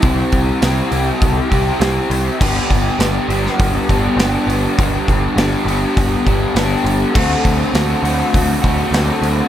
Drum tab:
CC |----------------|x---------------|----------------|x---------------|
HH |o-o-o-o-o-o-o-o-|--o-o-o-o-o-o-o-|o-o-o-o-o-o-o-o-|--o-o-o-o-o-o-o-|
SD |----o-------o---|----o--o----o---|----o-------o---|----o-------o---|
BD |o-o-----o-o-----|o-o-----o-o-----|o-o-----o-o-----|o-o-----o-o-----|